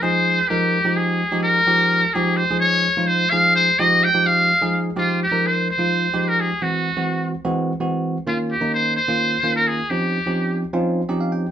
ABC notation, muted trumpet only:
X:1
M:7/8
L:1/16
Q:1/4=127
K:Fm
V:1 name="Muted trumpet"
c4 G4 A4 B2- | B4 A2 c2 d4 c2 | f2 c2 e2 g2 f4 z2 | F2 G2 c2 c4- c B A2 |
_G6 z8 | F2 G2 c2 c4- c B A2 | G6 z8 |]